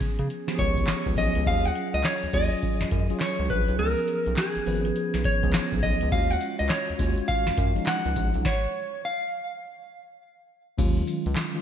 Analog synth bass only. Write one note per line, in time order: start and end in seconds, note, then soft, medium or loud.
0.01 0.08 C#3 soft
0.19 0.28 C#3 medium
0.59 0.84 C#2 medium
1.06 1.15 C#2 medium
1.17 1.33 B1 medium
1.36 1.45 C#2 medium
1.46 1.71 D#2 loud
1.94 2.03 C#2 medium
2.23 2.27 D#2 medium
2.34 2.49 D#2 medium
2.81 2.85 F#2 soft
2.92 3.07 F#2 medium
3.39 3.48 C#2 medium
3.50 3.66 A#1 loud
3.68 3.77 B1 medium
3.79 3.95 C#2 loud
4.27 4.36 B1 medium
4.56 4.60 G#1 medium
4.67 4.91 G#1 medium
5.14 5.23 B1 medium
5.43 5.52 C#2 loud
5.72 5.81 B1 medium
5.83 5.99 B1 loud
6.02 6.11 C#2 medium
6.12 6.37 D#2 loud
6.60 6.69 C#2 medium
6.90 6.94 D#2 medium
6.99 7.15 D#2 medium
7.47 7.52 F#2 soft
7.58 7.73 F#2 medium
8.06 8.15 C#2 medium
8.16 8.32 A#1 loud
8.35 8.44 B1 medium
10.79 11.03 D#2 loud
11.26 11.35 C#2 loud